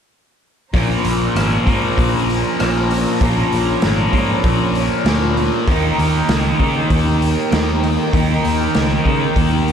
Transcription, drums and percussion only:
0.74 kick, open hi-hat
1.04 open hi-hat
1.36 cross-stick, open hi-hat
1.67 kick, open hi-hat
1.98 kick, open hi-hat
2.30 open hi-hat
2.60 cross-stick, open hi-hat
2.91 open hi-hat
3.21 kick, open hi-hat
3.52 open hi-hat
3.82 snare, open hi-hat
4.13 kick, open hi-hat
4.44 kick, open hi-hat
4.75 open hi-hat
5.06 snare, open hi-hat
5.37 open hi-hat
5.68 kick, open hi-hat
5.99 open hi-hat
6.29 snare, open hi-hat
6.60 kick, open hi-hat
6.90 kick, open hi-hat
7.22 open hi-hat
7.52 snare, open hi-hat
7.83 open hi-hat
8.13 kick, open hi-hat
8.45 open hi-hat
8.74 snare, open hi-hat
9.05 kick, open hi-hat
9.36 kick, open hi-hat
9.68 open hi-hat

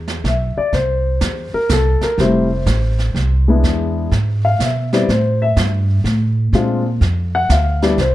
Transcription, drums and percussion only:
0.08 snare
0.24 kick, snare
0.73 brush sweep, kick, snare
1.21 kick, snare, hi-hat pedal
1.69 kick, snare, hi-hat pedal
2.01 snare
2.18 brush sweep, kick, snare
2.66 kick, snare, hi-hat pedal
2.99 snare
3.15 kick, snare
3.63 brush sweep, kick, snare
4.12 kick, snare
4.60 kick, snare, hi-hat pedal
4.93 snare
5.08 brush sweep, kick, snare
5.57 kick, snare, hi-hat pedal
6.05 kick, snare
6.53 brush sweep, kick, snare
7.01 kick, snare
7.50 kick, snare, hi-hat pedal
7.82 snare
7.98 brush sweep, kick, snare

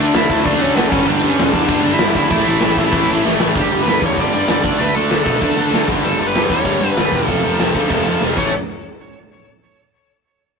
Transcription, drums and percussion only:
0.14 snare, crash
0.30 kick
0.46 kick, crash
0.77 snare, crash
0.92 kick
1.08 crash
1.39 snare, crash
1.53 kick
1.68 kick, crash
1.98 snare, crash
2.15 kick
2.30 kick, crash
2.60 snare, crash
2.77 kick
2.92 kick, crash
3.26 snare
3.40 snare
3.55 kick, open hi-hat
3.71 open hi-hat
3.87 snare, open hi-hat
4.02 kick, open hi-hat
4.17 kick, open hi-hat
4.33 open hi-hat
4.48 snare, open hi-hat
4.63 kick, open hi-hat
4.79 open hi-hat
4.94 open hi-hat
5.10 snare, open hi-hat
5.26 kick, open hi-hat
5.42 kick, open hi-hat
5.58 open hi-hat
5.73 snare, open hi-hat
5.88 kick, open hi-hat
6.04 open hi-hat
6.20 open hi-hat
6.35 snare, open hi-hat
6.50 kick, open hi-hat
6.65 kick, open hi-hat
6.81 open hi-hat
6.97 snare, open hi-hat
7.12 kick, open hi-hat
7.28 kick, open hi-hat
7.45 open hi-hat
7.59 snare, open hi-hat
7.74 kick, open hi-hat
7.90 kick, snare
8.21 snare
8.35 kick, crash

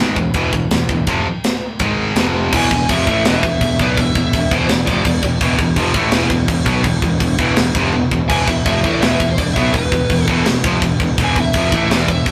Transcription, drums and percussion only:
0.16 kick
0.34 kick, ride bell
0.53 kick
0.71 snare, ride bell
0.89 kick
1.07 kick, ride bell
1.44 snare, ride bell
1.79 kick, ride bell
2.16 snare, ride bell
2.53 kick, crash
2.71 kick, crash
2.89 kick, crash
3.07 kick, crash
3.25 snare, crash
3.43 kick, crash
3.61 kick, crash
3.79 kick, crash
3.97 kick, crash
4.15 kick, crash
4.33 kick, crash
4.51 kick, crash
4.69 snare, crash
4.87 kick, crash
5.05 kick, crash
5.23 kick, crash
5.41 kick, crash
5.59 kick, crash
5.76 kick, crash
5.94 kick, crash
6.11 snare, crash
6.30 kick, crash
6.48 kick, crash
6.66 kick, crash
6.84 kick, crash
7.02 kick, crash
7.20 kick, crash
7.39 kick, crash
7.56 snare, crash
7.75 kick, crash
7.93 high tom
8.11 kick
8.30 kick, crash
8.48 kick, crash
8.66 kick, crash
8.84 kick, crash
9.02 snare, crash
9.20 kick, crash
9.38 kick, crash
9.56 kick, crash
9.74 kick, crash
9.92 kick, crash
10.10 kick, crash
10.28 kick, crash
10.46 snare, crash
10.64 kick, crash
10.82 kick, crash
11.00 kick, crash
11.18 kick, crash
11.36 kick, crash
11.53 kick, crash
11.72 kick, crash
11.91 snare, crash
12.08 kick, crash
12.26 kick, crash

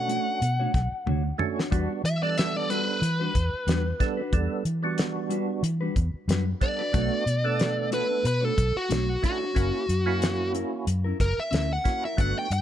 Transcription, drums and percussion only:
0.09 closed hi-hat
0.42 closed hi-hat
0.74 kick, snare, closed hi-hat
1.07 high tom
1.39 mid tom
1.59 snare
1.72 kick, closed hi-hat
2.05 closed hi-hat
2.38 snare, closed hi-hat
2.70 closed hi-hat
3.03 closed hi-hat
3.35 kick, closed hi-hat
3.68 snare, closed hi-hat
4.00 kick, snare, closed hi-hat
4.33 kick, closed hi-hat
4.65 closed hi-hat
4.98 snare, closed hi-hat
5.31 closed hi-hat
5.64 closed hi-hat
5.96 kick, closed hi-hat
6.29 snare, closed hi-hat
6.61 kick, closed hi-hat
6.94 kick, closed hi-hat
7.27 closed hi-hat
7.59 snare, closed hi-hat
7.92 closed hi-hat
8.25 closed hi-hat
8.58 kick, closed hi-hat
8.91 snare, closed hi-hat
9.24 kick, closed hi-hat
9.56 kick, closed hi-hat
9.89 closed hi-hat
10.22 snare, closed hi-hat
10.55 closed hi-hat
10.87 closed hi-hat
11.20 kick, snare, closed hi-hat
11.53 snare, closed hi-hat
11.85 kick, snare, closed hi-hat
12.18 kick, closed hi-hat
12.51 closed hi-hat

